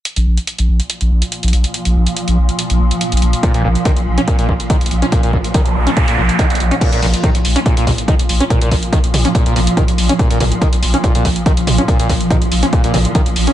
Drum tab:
CC |--------------------------------|--------------------------------|--------------------------------|--------------------------------|
HH |x-x---x-x-x---x-x-x---x-x-xxx-x-|x-x---x-x-x---x-x-x---x-x-xxx-x-|x-x---x-x-x---x-x-x---x-x-xxx-x-|x-x---x-x-x---x-x-x---x-x-xxx-x-|
T2 |--------------------------------|--------------------------------|--------------------------------|--------------------------------|
BD |--------------------------------|--------------------------------|o-------o-------o---o---o-------|o---o---o-------o-------o-------|

CC |x-------------------------------|--------------------------------|--------------------------------|--------------------------------|
HH |x-x-o-x-x-x-o-x-x-x-o-x-x-x-o-x-|x-x-o-x-x-x-o-x-x-x-o-x-x-x-o-x-|x-x-o-x-x-x-o-x-x-x-o-x-x-x-o-x-|x-x-o-x-x-x-o-x-x-x-o-x-x-x-o-x-|
T2 |--------o-----------o-----------|o-----------o-----------o-------|----o-----------o-----------o---|--------o-----------o-----------|
BD |o-------o-------o---o---o-------|o---o---o-------o-------o-------|o-------o-------o---o---o-------|o---o---o-------o-------o-------|